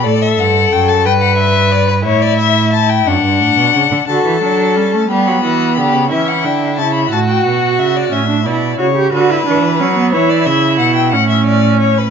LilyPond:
<<
  \new Staff \with { instrumentName = "Violin" } { \time 6/8 \key d \mixolydian \tempo 4. = 60 d''16 e''16 fis''8 g''16 a''16 g''16 fis''16 e''8 d''16 b'16 | cis''16 d''16 e''8 a''16 g''16 fis''4. | a''4. b''4. | e''16 fis''16 g''8 a''16 b''16 a''16 g''16 fis''8 e''16 d''16 |
e''8 d''8 cis''8 b'4. | cis''16 d''16 e''8 fis''16 g''16 fis''16 e''16 d''8 cis''16 b'16 | }
  \new Staff \with { instrumentName = "Violin" } { \time 6/8 \key d \mixolydian a'4. b'4. | e'4. d'4. | a'4. g'8 fis'8 g'8 | e'4. fis'4. |
r2. | r2. | }
  \new Staff \with { instrumentName = "Viola" } { \time 6/8 \key d \mixolydian r2. | r2. | fis'8 d'8 cis'8 b4. | cis'8 d'8 e'8 fis'4. |
cis'16 d'16 e'8 fis'16 g'16 fis'16 e'16 d'8 cis'16 b16 | e'4. cis'4. | }
  \new Staff \with { instrumentName = "Cello" } { \clef bass \time 6/8 \key d \mixolydian a,8 g,8 fis,8 g,4. | a,4. fis,16 g,16 a,16 b,16 cis16 d16 | d16 e16 fis8 g16 a16 g16 fis16 e8 d16 cis16 | e8 d8 cis8 a,8 b,8 cis8 |
a,8 b,8 cis8 d8 e8 fis8 | e8 cis8 b,8 a,4. | }
>>